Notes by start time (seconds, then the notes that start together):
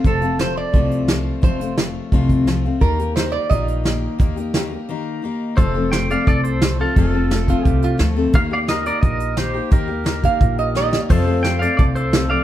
0.04 F1 F2 C3 F3 A3 C4 F4 A4, kick, closed hi-hat
0.21 F3 A3 C4 F4, closed hi-hat
0.39 F3 A3 C4 F4 C5, snare, closed hi-hat
0.57 D5
0.73 C2 F2 C3 F3 A3 C4 F4, kick, closed hi-hat
0.91 closed hi-hat
1.08 F3 A3 C4 F4, snare, closed hi-hat
1.42 F1 F2 C3 F3 A3 C4 F4 C5, kick, closed hi-hat
1.60 F3 A3 C4 F4, closed hi-hat
1.77 F3 A3 C4 F4, snare, closed hi-hat
2.12 C2 F2 C3 F3 A3 C4 F4, kick, closed hi-hat
2.29 kick, closed hi-hat
2.47 F3 A3 C4 F4, snare, closed hi-hat
2.64 F3 A3 C4 F4
2.81 D#2 D#3 A#3 D#4 G4 A#4, kick, closed hi-hat
2.99 A#3 D#4 G4, closed hi-hat
3.16 D#3 A#3 D#4 G4 C5, snare, closed hi-hat
3.32 D5
3.50 A#1 D#3 A#3 D#4 G4 D#5, kick, closed hi-hat
3.68 closed hi-hat
3.84 D#3 A#3 D#4 G4, snare, closed hi-hat
4.19 D#2 D#3 A#3 D#4 G4, kick, closed hi-hat
4.36 A#3 D#4 G4, closed hi-hat
4.54 D#3 A#3 D#4 G4, snare, closed hi-hat
4.71 A#3 D#4 G4
4.89 D#3 A#3 D#4 G4
5.22 D#3 A#3 D#4 G4
5.56 F1 F2 C3 F3 A3 C4 A4 C5, kick, closed hi-hat
5.74 F3 A3 C4 A4
5.92 F3 A3 C4 A4 C5 G5, snare, closed hi-hat
6.10 F3 A3 C4 A4 D5 F5, closed hi-hat
6.27 C2 A4 D5, kick, closed hi-hat
6.44 A4 C5, closed hi-hat
6.61 F3 A3 C4 A4, snare, closed hi-hat
6.79 F3 A3 C4 F4 A4
6.96 F1 F2 C3 F3 A3 C4 A4, kick, closed hi-hat
7.13 F3 A3 C4 A4
7.31 F3 A3 C4 A4, snare, closed hi-hat
7.47 F3 A3 C4 F4 A4, kick, closed hi-hat
7.65 C2 G4, kick, closed hi-hat
7.82 F4, closed hi-hat
7.98 D2 F3 A3 C4 A4, snare, closed hi-hat
8.16 F3 A3 C4 A4
8.33 D#2 D#3 A#3 D#4 G4 A#4 F5, kick, closed hi-hat
8.51 A#3 D#4 G4 D5 F5
8.67 D#3 A#3 D#4 G4 A#4 D#5, snare, closed hi-hat
8.84 A#3 D#4 G4 A#4 D5, closed hi-hat
9.01 A#1 A#4 D#5, kick, closed hi-hat
9.20 closed hi-hat
9.37 D#3 A#3 D#4 G4 C5, snare, closed hi-hat
9.54 A#3 D#4 G4
9.71 D#2 D#3 A#3 D#4 G4 A#4, kick, closed hi-hat
9.88 A#3 D#4 G4
10.04 D#3 A#3 D#4 G4, snare, closed hi-hat
10.23 A#3 D#4 G4 F5, kick, closed hi-hat
10.40 A#1, kick, closed hi-hat
10.58 D#5, closed hi-hat
10.75 D#3 A#3 D#4 G4 D#5, snare
10.91 A#3 D#4 G4, snare
11.09 F2 C3 F3 A3 C4 A4 C5 F5, kick, closed hi-hat, crash
11.26 F3 A3 C4 A4
11.43 F3 A3 C4 A4 C5 G5, snare, closed hi-hat
11.59 A3 C4 A4 D5 F5, closed hi-hat
11.64 F3
11.77 C2 A4 D5, kick, closed hi-hat
11.95 A4 C5, closed hi-hat
12.11 F3 A3 C4 A4, snare, closed hi-hat
12.29 F3 A3 C4 A4 D5 F5